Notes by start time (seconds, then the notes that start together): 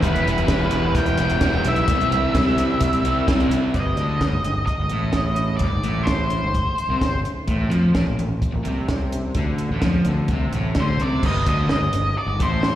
0.02 E1 E3 G3 B3 E4 B4, kick, closed hi-hat
0.16 closed hi-hat
0.26 E1 G3 B3 E4, closed hi-hat
0.38 closed hi-hat
0.48 E1 E3 G3 B3 E4, kick, snare, closed hi-hat
0.60 snare
0.71 E1, closed hi-hat
0.95 E1 G5, kick, closed hi-hat
1.06 closed hi-hat
1.18 E1 G3 B3 E4, closed hi-hat
1.30 closed hi-hat
1.41 E1 E3 G3 B3, kick, snare, closed hi-hat
1.45 E4
1.65 B1 G3 B3 E4 E5, closed hi-hat
1.76 closed hi-hat
1.87 C2 C3 G3 C4 E4, kick, closed hi-hat
2.01 closed hi-hat
2.11 C2 G3 C4 E4, closed hi-hat
2.34 C2 C3 G3 C4 E4, kick, snare, closed hi-hat
2.47 snare
2.56 C2, closed hi-hat
2.80 C2, kick, closed hi-hat
2.93 closed hi-hat
3.02 C2 C4 E4, closed hi-hat
3.07 G3
3.27 C2 C3 G3 C4 E4, kick, snare, closed hi-hat
3.40 closed hi-hat
3.49 C2 G3 C4 E4, closed hi-hat
3.74 G1 G2 D#5, kick, closed hi-hat
3.95 D2, closed hi-hat
4.00 D3
4.20 G1 G2, kick, snare, closed hi-hat
4.29 G1
4.35 G#2
4.42 G1, closed hi-hat
4.46 G#2
4.66 D#5, kick, closed hi-hat
4.78 G1 G#2
4.89 A1 A2, closed hi-hat
5.13 kick, snare, closed hi-hat
5.36 closed hi-hat
5.57 G1 D5, kick, closed hi-hat
5.62 G2
5.72 G1 G#2
5.84 A1 A2, closed hi-hat
6.03 C5, snare, closed hi-hat
6.07 kick
6.30 closed hi-hat
6.43 G1 G#2
6.54 kick, closed hi-hat
6.78 closed hi-hat
6.89 C2 C3
7.01 G1 G#2, kick, snare, closed hi-hat
7.25 closed hi-hat
7.47 A1 A2, kick, closed hi-hat
7.70 F2 F3, closed hi-hat
7.94 A1 A2, kick, snare, closed hi-hat
8.07 A1 A#2
8.19 A1 A#2, closed hi-hat
8.42 kick, closed hi-hat
8.53 A1 A#2
8.64 C2 C3, closed hi-hat
8.89 kick, snare, closed hi-hat
9.12 closed hi-hat
9.35 D2 D3, kick, closed hi-hat
9.58 closed hi-hat
9.69 A1 A2
9.82 F2 F3, kick, snare, closed hi-hat
10.05 D2 D3, closed hi-hat
10.28 C2 C3, kick, closed hi-hat
10.52 A1 A2, closed hi-hat
10.75 D2 D3, kick, snare, closed hi-hat
10.80 C5
10.97 C2 C3, closed hi-hat
11.02 D5
11.23 G1 G2 D#5, kick, crash
11.46 D2 D3 D#5, kick, closed hi-hat
11.68 G1 G2, snare
11.72 D#5
11.79 G1 G#2
11.92 G1 G#2, closed hi-hat
12.18 D5
12.26 G1 G#2
12.40 A1 A2 C5, kick, closed hi-hat
12.63 snare